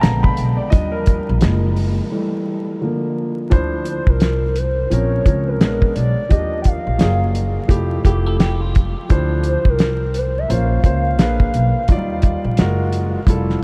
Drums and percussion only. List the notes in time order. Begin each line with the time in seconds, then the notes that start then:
0.03 snare, closed hi-hat
0.24 kick
0.37 closed hi-hat
0.72 kick, closed hi-hat
1.06 kick, closed hi-hat
1.41 snare, closed hi-hat
1.76 open hi-hat
3.51 kick, closed hi-hat
3.85 closed hi-hat
4.07 kick
4.20 snare, closed hi-hat
4.56 closed hi-hat
4.91 closed hi-hat
5.26 kick, closed hi-hat
5.61 snare, closed hi-hat
5.82 kick
5.96 closed hi-hat
6.31 kick, closed hi-hat
6.64 kick, closed hi-hat
6.99 snare, closed hi-hat
7.35 closed hi-hat
7.69 kick, closed hi-hat
8.05 kick, closed hi-hat
8.40 snare, closed hi-hat
8.75 kick, closed hi-hat
9.10 kick, closed hi-hat
9.44 closed hi-hat
9.65 kick
9.79 snare, closed hi-hat
10.14 closed hi-hat
10.50 closed hi-hat
10.84 kick, closed hi-hat
11.19 snare, closed hi-hat
11.40 kick
11.54 closed hi-hat
11.88 kick, closed hi-hat
12.22 kick, closed hi-hat
12.57 snare, closed hi-hat
12.93 closed hi-hat
13.27 kick, closed hi-hat
13.50 snare